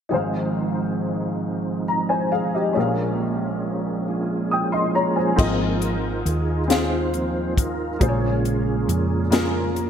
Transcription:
0.09 2.71 G#1 soft
0.09 2.71 G#2 soft
0.09 5.33 F3 soft
0.09 5.33 G#3 soft
0.09 2.72 C4 soft
0.09 2.70 D#4 soft
0.09 2.72 D#4 soft
0.09 1.83 G#4 soft
0.14 1.85 C5 soft
0.14 1.86 F5 soft
1.88 2.09 A#5 soft
2.09 2.31 C5 soft
2.09 2.30 G#5 soft
2.32 2.53 G#4 soft
2.32 2.53 F5 soft
2.55 2.96 G4 soft
2.55 2.96 D#5 soft
2.73 5.35 A#1 soft
2.73 5.35 A#2 soft
2.73 5.36 A#3 soft
2.73 5.33 C#4 soft
2.73 4.07 C#4 soft
2.73 5.34 G#4 soft
2.77 5.35 A#4 soft
2.77 4.50 F5 medium
4.08 5.35 C#4 soft
4.08 5.35 F4 soft
4.08 5.44 G#4 medium
4.51 4.73 G5 soft
4.51 4.72 D#6 soft
4.72 4.94 D#5 soft
4.72 4.93 C6 soft
4.95 5.16 C#5 soft
4.95 5.16 A#5 soft
5.16 5.58 C5 soft
5.16 5.58 G#5 soft
5.36 6.22 G#1 medium
5.36 6.65 G#2 soft
5.36 5.96 F3 soft
5.36 5.97 A#3 soft
5.36 6.58 C4 medium
5.36 5.97 C4 soft
5.36 6.66 D#4 soft
5.36 6.58 F4 medium
5.36 6.66 F4 soft
5.36 6.59 G#4 medium
5.36 6.59 D#5 medium
5.36 kick medium
5.36 crash medium
5.40 6.30 A#4 medium
5.82 closed hi-hat soft
6.26 7.97 D#2 medium
6.26 6.72 G#4 medium
6.26 closed hi-hat soft
6.68 7.89 C4 soft
6.68 7.98 D#4 medium
6.68 7.90 F4 soft
6.68 7.98 F4 medium
6.68 7.90 G#4 soft
6.68 7.54 C5 medium
6.68 7.91 F5 medium
6.68 snare medium
6.68 closed hi-hat medium
7.14 7.54 F3 soft
7.14 7.54 A#3 soft
7.14 7.55 C4 soft
7.14 closed hi-hat soft
7.58 8.03 A#4 medium
7.58 kick medium
7.58 closed hi-hat medium
7.99 8.85 A#1 medium
7.99 9.28 A#2 soft
7.99 9.28 C#3 soft
7.99 9.28 G#3 soft
7.99 9.21 A#3 medium
7.99 9.29 A#3 soft
7.99 9.90 C#4 soft
7.99 9.22 F4 medium
7.99 9.90 F4 soft
7.99 9.22 G#4 medium
7.99 8.08 C5 soft
7.99 kick medium
7.99 closed hi-hat medium
8.08 9.25 C#5 medium
8.45 closed hi-hat soft
8.88 9.90 F2 medium
8.88 closed hi-hat soft
9.30 9.72 C#3 soft
9.30 9.72 G#3 soft
9.30 9.90 A#3 medium
9.30 9.72 C4 soft
9.30 9.90 F4 medium
9.30 9.90 G#4 medium
9.30 9.90 A#4 medium
9.30 snare medium
9.30 closed hi-hat medium
9.76 closed hi-hat soft

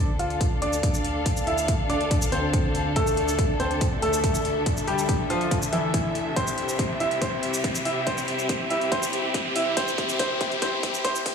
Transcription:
0.00 6.32 D2 medium
0.00 6.32 D3 medium
0.00 0.11 D4 medium
0.00 6.32 D4 medium
0.00 7.19 D4 medium
0.00 6.32 A4 medium
0.00 7.06 A4 medium
0.00 0.30 C5 medium
0.00 0.11 D5 medium
0.00 0.16 G5 medium
0.00 riser medium
0.19 0.43 F4 medium
0.19 0.43 F5 medium
0.19 closed hi-hat medium
0.30 4.00 F5 medium
0.30 closed hi-hat soft
0.41 kick medium
0.41 closed hi-hat medium
0.62 1.39 D4 medium
0.62 1.39 D5 medium
0.62 closed hi-hat medium
0.73 shaker medium
0.83 kick loud
0.83 closed hi-hat medium
0.94 shaker medium
1.05 closed hi-hat medium
1.26 kick medium
1.26 closed hi-hat medium
1.37 shaker soft
1.47 1.71 E4 medium
1.47 1.71 E5 medium
1.47 closed hi-hat soft
1.58 shaker soft
1.68 kick medium
1.68 closed hi-hat medium
1.90 2.13 D4 medium
1.90 2.13 D5 medium
1.90 closed hi-hat medium
2.01 closed hi-hat soft
2.11 kick loud
2.11 closed hi-hat medium
2.22 shaker medium
2.32 2.88 C4 medium
2.32 2.88 C5 medium
2.32 closed hi-hat medium
2.53 kick loud
2.53 closed hi-hat medium
2.75 closed hi-hat medium
2.96 3.52 A3 medium
2.96 3.52 A4 loud
2.96 kick medium
2.96 closed hi-hat medium
3.07 shaker soft
3.17 closed hi-hat soft
3.28 shaker medium
3.39 kick loud
3.39 closed hi-hat medium
3.60 3.83 C4 medium
3.60 3.83 C5 medium
3.60 closed hi-hat soft
3.71 closed hi-hat soft
3.81 kick loud
3.81 closed hi-hat medium
3.88 11.35 E5 medium
4.02 4.79 A3 medium
4.02 4.79 A4 medium
4.02 closed hi-hat medium
4.13 shaker medium
4.24 kick medium
4.24 closed hi-hat medium
4.35 shaker medium
4.45 closed hi-hat medium
4.66 kick medium
4.66 closed hi-hat medium
4.77 shaker medium
4.88 5.11 G3 medium
4.88 5.11 G4 medium
4.88 closed hi-hat soft
4.98 shaker medium
5.09 kick medium
5.09 closed hi-hat medium
5.30 5.54 F3 medium
5.30 5.54 F4 medium
5.30 closed hi-hat soft
5.41 closed hi-hat soft
5.51 kick loud
5.51 closed hi-hat medium
5.62 shaker medium
5.73 6.28 E3 medium
5.73 6.28 E4 medium
5.73 closed hi-hat medium
5.94 kick loud
5.94 closed hi-hat medium
6.15 closed hi-hat soft
6.36 11.35 C2 medium
6.36 11.35 C3 medium
6.36 11.35 C4 medium
6.36 6.92 C4 medium
6.36 11.35 E4 medium
6.36 11.35 G4 medium
6.36 6.92 C5 medium
6.36 kick loud
6.36 closed hi-hat medium
6.47 shaker medium
6.58 closed hi-hat soft
6.69 shaker medium
6.79 11.35 G4 medium
6.79 kick loud
6.79 closed hi-hat medium
7.00 7.20 E4 medium
7.00 7.20 E5 medium
7.00 closed hi-hat soft
7.11 closed hi-hat soft
7.22 7.77 C4 medium
7.22 7.77 C5 medium
7.22 kick loud
7.22 closed hi-hat medium
7.43 closed hi-hat medium
7.54 shaker medium
7.64 kick loud
7.64 closed hi-hat medium
7.75 shaker medium
7.85 8.05 E4 medium
7.85 8.05 E5 medium
7.85 open hi-hat medium
8.07 8.62 C4 medium
8.07 8.62 C5 medium
8.07 kick loud
8.07 closed hi-hat medium
8.18 shaker soft
8.28 closed hi-hat medium
8.39 shaker medium
8.49 kick loud
8.49 closed hi-hat medium
8.70 8.90 E4 medium
8.70 8.90 E5 medium
8.70 closed hi-hat soft
8.81 closed hi-hat soft
8.92 9.47 C4 medium
8.92 9.47 C5 loud
8.92 kick loud
8.92 closed hi-hat medium
9.03 shaker medium
9.13 closed hi-hat medium
9.34 kick loud
9.34 closed hi-hat medium
9.56 9.75 E4 medium
9.56 9.75 E5 medium
9.56 open hi-hat loud
9.77 10.18 C4 medium
9.77 10.18 C5 loud
9.77 kick loud
9.77 closed hi-hat medium
9.88 shaker soft
9.98 kick loud
9.98 closed hi-hat medium
10.09 shaker soft
10.19 10.60 C4 medium
10.19 10.60 C5 medium
10.19 kick loud
10.19 closed hi-hat medium
10.41 kick loud
10.41 closed hi-hat medium
10.52 closed hi-hat soft
10.62 11.03 C4 medium
10.62 11.03 C5 loud
10.62 kick loud
10.62 closed hi-hat medium
10.83 kick loud
10.83 closed hi-hat medium
10.94 shaker medium
11.05 11.35 C4 medium
11.05 11.35 C5 loud
11.05 kick loud
11.05 closed hi-hat medium
11.15 shaker medium
11.26 kick loud
11.26 open hi-hat loud

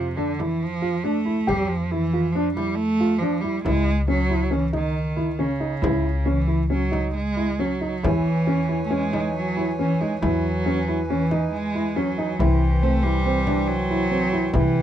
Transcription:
0.00 1.44 F2 medium
0.00 0.18 C3 medium
0.17 0.41 D3 medium
0.17 0.29 D4 medium
0.39 0.64 E3 medium
0.39 0.61 E4 medium
0.39 frame drum soft
0.63 1.07 F3 medium
0.82 0.93 F4 medium
1.04 1.50 A3 medium
1.04 1.15 D4 medium
1.25 1.37 E4 medium
1.47 3.61 F2 medium
1.47 1.70 G3 medium
1.47 1.70 G4 medium
1.47 frame drum medium
1.68 1.92 F3 medium
1.68 frame drum soft
1.91 2.34 E3 medium
1.91 2.02 E4 medium
2.13 2.24 F4 medium
2.32 2.53 F3 medium
2.32 2.46 D4 medium
2.54 2.76 G3 medium
2.54 2.79 E4 medium
2.54 frame drum soft
2.75 3.20 A3 loud
3.00 3.11 F4 medium
3.19 3.43 F3 medium
3.19 3.33 D4 medium
3.41 3.64 G3 medium
3.41 3.54 E4 medium
3.64 5.79 C#2 medium
3.64 4.05 G#3 loud
3.64 3.87 E4 medium
3.64 frame drum medium
4.08 4.55 F#3 medium
4.08 4.19 C#4 medium
4.30 4.41 E4 medium
4.51 4.74 E3 medium
4.51 4.62 C#4 medium
4.73 5.41 D#3 medium
4.73 4.95 D#4 medium
4.73 frame drum soft
5.16 5.28 E4 medium
5.39 6.28 C#3 medium
5.39 5.50 C#4 medium
5.60 5.72 D#4 medium
5.82 7.99 C#2 medium
5.82 6.04 E4 medium
5.82 frame drum medium
6.26 6.70 E3 medium
6.26 6.37 C#4 medium
6.26 frame drum soft
6.47 6.59 E4 medium
6.70 7.12 F#3 medium
6.70 6.81 C#4 medium
6.92 7.14 D#4 medium
6.92 frame drum soft
7.15 7.62 G#3 loud
7.15 frame drum soft
7.36 7.48 E4 medium
7.59 8.05 F#3 medium
7.59 7.71 C#4 medium
7.59 frame drum soft
7.81 7.92 D#4 medium
8.03 10.19 E2 medium
8.03 8.84 E3 medium
8.03 14.82 E3 medium
8.03 8.26 E4 medium
8.03 10.21 C#5 medium
8.03 12.36 G#5 medium
8.03 frame drum medium
8.27 frame drum soft
8.47 8.58 C#4 medium
8.69 8.80 E4 medium
8.85 8.94 A3 medium
8.91 9.35 G#3 medium
8.91 9.02 C#4 medium
9.13 9.35 D#4 medium
9.13 frame drum soft
9.36 9.76 F#3 medium
9.57 9.68 E4 medium
9.79 10.02 E3 medium
9.79 9.90 C#4 medium
10.00 10.21 G#3 medium
10.00 10.12 D#4 medium
10.22 12.35 E2 medium
10.22 11.05 F#3 medium
10.22 10.44 E4 medium
10.22 12.37 B4 medium
10.22 frame drum medium
10.66 10.77 C#4 medium
10.88 10.99 E4 medium
11.09 11.49 E3 medium
11.09 11.21 C#4 medium
11.31 11.53 D#4 medium
11.31 frame drum soft
11.52 11.98 G#3 medium
11.75 11.86 E4 medium
11.96 12.41 F#3 medium
11.96 12.07 C#4 medium
12.18 12.29 D#4 medium
12.39 14.51 C2 medium
12.39 12.84 E3 medium
12.39 12.61 E4 medium
12.39 14.53 C5 medium
12.39 14.82 G5 medium
12.39 frame drum medium
12.61 frame drum soft
12.83 13.05 A3 medium
12.83 12.94 C4 medium
13.03 13.69 G3 medium
13.03 13.15 E4 medium
13.26 13.37 C4 medium
13.47 13.69 D4 medium
13.47 frame drum medium
13.68 14.56 F#3 loud
13.90 14.01 E4 medium
14.11 14.22 C4 medium
14.33 14.44 E4 medium
14.54 14.82 C2 medium
14.54 14.82 E3 medium
14.54 14.76 E4 medium
14.54 14.82 B4 medium
14.54 frame drum medium
14.76 frame drum soft

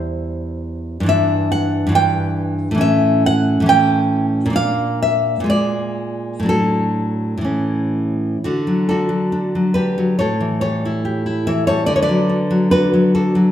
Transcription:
0.00 1.00 E2 medium
0.00 1.02 G3 medium
0.00 1.03 E4 soft
0.00 1.05 C5 loud
1.00 1.85 G2 medium
1.00 1.88 E3 medium
1.06 1.91 D4 medium
1.06 1.50 E5 loud
1.52 1.93 F#5 loud
1.87 2.74 G2 medium
1.87 2.71 E3 medium
1.92 2.78 D4 medium
1.92 2.79 G5 loud
2.71 3.59 A2 medium
2.71 3.61 E3 medium
2.78 3.65 C#4 medium
2.78 3.24 E5 loud
3.26 3.68 F#5 loud
3.60 4.50 A2 medium
3.60 4.45 E3 medium
3.66 4.50 C#4 medium
3.66 4.53 G5 loud
4.46 5.39 A#2 medium
4.50 5.43 A#3 medium
4.50 5.45 D4 medium
4.56 5.00 F5 loud
5.02 5.48 E5 loud
5.40 6.41 A#2 medium
5.40 6.42 G#3 medium
5.46 6.44 F4 medium
5.46 6.45 D5 loud
6.40 7.36 A2 medium
6.40 7.41 F#3 medium
6.46 7.43 D4 soft
6.46 7.44 A4 medium
7.37 8.35 A2 medium
7.37 8.37 E3 soft
7.45 8.39 C#4 medium
8.44 10.16 D3 medium
8.44 8.86 D4 medium
8.44 8.86 F#4 medium
8.67 9.08 F#3 soft
8.89 9.31 D4 soft
8.89 9.73 F#4 medium
8.89 9.72 A4 medium
9.09 9.54 F#3 soft
9.32 9.74 D4 soft
9.55 9.97 F#3 soft
9.74 10.19 D4 soft
9.74 10.16 G4 medium
9.74 10.16 B4 medium
9.98 10.19 F#3 medium
10.19 11.86 A2 medium
10.19 10.60 A4 medium
10.19 10.60 C#5 medium
10.40 11.46 E3 soft
10.61 11.04 G3 soft
10.61 11.44 A4 medium
10.61 11.44 C#5 medium
10.85 11.25 E4 soft
11.05 11.68 G4 soft
11.26 11.86 E4 soft
11.47 11.89 E3 soft
11.47 11.66 C#5 medium
11.47 11.67 E5 medium
11.67 11.89 G3 medium
11.67 11.88 A4 medium
11.67 11.86 C#5 loud
11.86 13.49 D3 medium
11.86 11.95 D5 medium
11.96 12.02 C#5 medium
12.02 12.67 B4 medium
12.02 12.68 D5 medium
12.09 12.49 F#3 medium
12.29 12.70 D4 soft
12.51 12.92 F#3 medium
12.71 13.14 D4 medium
12.71 13.10 F#4 medium
12.71 13.11 B4 medium
12.93 13.34 F#3 medium
13.15 13.52 D4 soft
13.15 13.52 F#4 soft
13.15 13.52 A4 medium
13.35 13.52 F#3 medium

